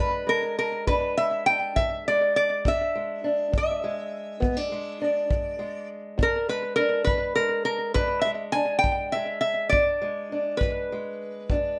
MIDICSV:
0, 0, Header, 1, 4, 480
1, 0, Start_track
1, 0, Tempo, 589971
1, 2155, Time_signature, 12, 3, 24, 8
1, 9592, End_track
2, 0, Start_track
2, 0, Title_t, "Resonator guitar played with a steel bar"
2, 0, Program_c, 0, 25
2, 0, Note_on_c, 0, 71, 75
2, 235, Note_on_c, 0, 70, 80
2, 236, Note_off_c, 0, 71, 0
2, 467, Note_off_c, 0, 70, 0
2, 477, Note_on_c, 0, 70, 78
2, 708, Note_off_c, 0, 70, 0
2, 711, Note_on_c, 0, 71, 81
2, 936, Note_off_c, 0, 71, 0
2, 956, Note_on_c, 0, 76, 85
2, 1186, Note_off_c, 0, 76, 0
2, 1189, Note_on_c, 0, 79, 89
2, 1433, Note_on_c, 0, 76, 91
2, 1439, Note_off_c, 0, 79, 0
2, 1657, Note_off_c, 0, 76, 0
2, 1690, Note_on_c, 0, 74, 83
2, 1913, Note_off_c, 0, 74, 0
2, 1922, Note_on_c, 0, 74, 85
2, 2166, Note_off_c, 0, 74, 0
2, 2180, Note_on_c, 0, 76, 89
2, 2856, Note_off_c, 0, 76, 0
2, 2910, Note_on_c, 0, 76, 70
2, 4114, Note_off_c, 0, 76, 0
2, 4114, Note_on_c, 0, 74, 70
2, 4781, Note_off_c, 0, 74, 0
2, 5066, Note_on_c, 0, 70, 83
2, 5280, Note_off_c, 0, 70, 0
2, 5283, Note_on_c, 0, 71, 74
2, 5495, Note_off_c, 0, 71, 0
2, 5498, Note_on_c, 0, 70, 78
2, 5728, Note_off_c, 0, 70, 0
2, 5732, Note_on_c, 0, 71, 81
2, 5981, Note_off_c, 0, 71, 0
2, 5984, Note_on_c, 0, 70, 81
2, 6214, Note_off_c, 0, 70, 0
2, 6224, Note_on_c, 0, 70, 76
2, 6460, Note_off_c, 0, 70, 0
2, 6463, Note_on_c, 0, 71, 84
2, 6684, Note_on_c, 0, 76, 87
2, 6692, Note_off_c, 0, 71, 0
2, 6753, Note_off_c, 0, 76, 0
2, 6934, Note_on_c, 0, 80, 98
2, 7145, Note_off_c, 0, 80, 0
2, 7148, Note_on_c, 0, 79, 92
2, 7419, Note_off_c, 0, 79, 0
2, 7422, Note_on_c, 0, 76, 90
2, 7644, Note_off_c, 0, 76, 0
2, 7654, Note_on_c, 0, 76, 91
2, 7884, Note_off_c, 0, 76, 0
2, 7888, Note_on_c, 0, 74, 85
2, 8602, Note_on_c, 0, 71, 72
2, 8641, Note_off_c, 0, 74, 0
2, 9592, Note_off_c, 0, 71, 0
2, 9592, End_track
3, 0, Start_track
3, 0, Title_t, "Steel-string acoustic guitar"
3, 0, Program_c, 1, 25
3, 0, Note_on_c, 1, 52, 58
3, 0, Note_on_c, 1, 56, 56
3, 0, Note_on_c, 1, 62, 56
3, 215, Note_off_c, 1, 56, 0
3, 218, Note_on_c, 1, 56, 53
3, 413, Note_off_c, 1, 52, 0
3, 706, Note_on_c, 1, 40, 70
3, 709, Note_off_c, 1, 62, 0
3, 712, Note_on_c, 1, 62, 59
3, 957, Note_off_c, 1, 56, 0
3, 960, Note_on_c, 1, 56, 50
3, 1142, Note_off_c, 1, 40, 0
3, 1209, Note_off_c, 1, 62, 0
3, 1213, Note_on_c, 1, 62, 53
3, 1444, Note_on_c, 1, 52, 62
3, 1687, Note_off_c, 1, 56, 0
3, 1691, Note_on_c, 1, 56, 53
3, 1872, Note_off_c, 1, 52, 0
3, 2161, Note_on_c, 1, 40, 70
3, 2162, Note_off_c, 1, 62, 0
3, 2166, Note_on_c, 1, 62, 60
3, 2187, Note_off_c, 1, 56, 0
3, 2403, Note_on_c, 1, 56, 58
3, 2592, Note_off_c, 1, 40, 0
3, 2634, Note_off_c, 1, 62, 0
3, 2638, Note_on_c, 1, 62, 59
3, 2866, Note_on_c, 1, 52, 56
3, 3119, Note_off_c, 1, 56, 0
3, 3122, Note_on_c, 1, 56, 56
3, 3303, Note_off_c, 1, 52, 0
3, 3577, Note_off_c, 1, 62, 0
3, 3581, Note_on_c, 1, 59, 60
3, 3584, Note_on_c, 1, 40, 74
3, 3715, Note_off_c, 1, 59, 0
3, 3715, Note_on_c, 1, 62, 47
3, 3835, Note_off_c, 1, 56, 0
3, 3838, Note_on_c, 1, 56, 57
3, 4022, Note_off_c, 1, 40, 0
3, 4071, Note_off_c, 1, 62, 0
3, 4081, Note_on_c, 1, 62, 54
3, 4312, Note_on_c, 1, 52, 60
3, 4544, Note_off_c, 1, 56, 0
3, 4547, Note_on_c, 1, 56, 56
3, 4746, Note_off_c, 1, 52, 0
3, 5025, Note_on_c, 1, 40, 73
3, 5029, Note_off_c, 1, 62, 0
3, 5033, Note_on_c, 1, 62, 57
3, 5057, Note_off_c, 1, 56, 0
3, 5278, Note_on_c, 1, 56, 59
3, 5462, Note_off_c, 1, 40, 0
3, 5512, Note_off_c, 1, 62, 0
3, 5515, Note_on_c, 1, 62, 55
3, 5754, Note_on_c, 1, 52, 62
3, 5992, Note_off_c, 1, 56, 0
3, 5995, Note_on_c, 1, 56, 59
3, 6187, Note_off_c, 1, 52, 0
3, 6467, Note_on_c, 1, 40, 72
3, 6473, Note_off_c, 1, 62, 0
3, 6476, Note_on_c, 1, 62, 57
3, 6701, Note_off_c, 1, 56, 0
3, 6711, Note_on_c, 1, 56, 53
3, 6903, Note_off_c, 1, 40, 0
3, 6946, Note_off_c, 1, 62, 0
3, 6956, Note_on_c, 1, 62, 58
3, 7200, Note_on_c, 1, 52, 65
3, 7432, Note_off_c, 1, 56, 0
3, 7444, Note_on_c, 1, 56, 54
3, 7628, Note_off_c, 1, 52, 0
3, 7885, Note_off_c, 1, 62, 0
3, 7889, Note_off_c, 1, 56, 0
3, 7903, Note_on_c, 1, 40, 70
3, 7910, Note_on_c, 1, 62, 55
3, 8149, Note_on_c, 1, 56, 62
3, 8340, Note_off_c, 1, 40, 0
3, 8389, Note_off_c, 1, 62, 0
3, 8398, Note_on_c, 1, 62, 58
3, 8643, Note_on_c, 1, 52, 55
3, 8869, Note_off_c, 1, 56, 0
3, 8887, Note_on_c, 1, 56, 58
3, 9068, Note_off_c, 1, 52, 0
3, 9353, Note_off_c, 1, 62, 0
3, 9357, Note_on_c, 1, 40, 70
3, 9365, Note_on_c, 1, 62, 59
3, 9592, Note_off_c, 1, 40, 0
3, 9592, Note_off_c, 1, 56, 0
3, 9592, Note_off_c, 1, 62, 0
3, 9592, End_track
4, 0, Start_track
4, 0, Title_t, "Drums"
4, 711, Note_on_c, 9, 36, 56
4, 793, Note_off_c, 9, 36, 0
4, 1436, Note_on_c, 9, 36, 58
4, 1518, Note_off_c, 9, 36, 0
4, 2158, Note_on_c, 9, 36, 65
4, 2239, Note_off_c, 9, 36, 0
4, 2876, Note_on_c, 9, 36, 66
4, 2958, Note_off_c, 9, 36, 0
4, 3599, Note_on_c, 9, 36, 60
4, 3681, Note_off_c, 9, 36, 0
4, 4317, Note_on_c, 9, 36, 65
4, 4398, Note_off_c, 9, 36, 0
4, 5035, Note_on_c, 9, 36, 64
4, 5117, Note_off_c, 9, 36, 0
4, 5754, Note_on_c, 9, 36, 68
4, 5836, Note_off_c, 9, 36, 0
4, 6473, Note_on_c, 9, 36, 61
4, 6555, Note_off_c, 9, 36, 0
4, 7192, Note_on_c, 9, 36, 60
4, 7273, Note_off_c, 9, 36, 0
4, 7914, Note_on_c, 9, 36, 65
4, 7995, Note_off_c, 9, 36, 0
4, 8632, Note_on_c, 9, 36, 64
4, 8714, Note_off_c, 9, 36, 0
4, 9353, Note_on_c, 9, 36, 59
4, 9435, Note_off_c, 9, 36, 0
4, 9592, End_track
0, 0, End_of_file